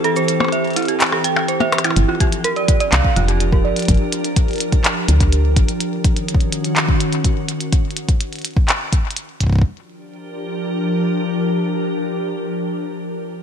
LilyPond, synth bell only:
\new Staff \with { instrumentName = "Synth bell" } { \time 4/4 \key g \dorian \tempo 4 = 125 a'16 c''16 r16 c''16 e''16 r16 e'16 g'16 r16 a'16 g''16 r16 c''16 e''16 r16 e'16 | r16 f'16 g'16 r16 bes'16 d''16 r16 d''16 f''16 r16 f'16 g'16 r16 bes'16 d''16 r16 | r1 | r1 |
r1 | r1 | r1 | }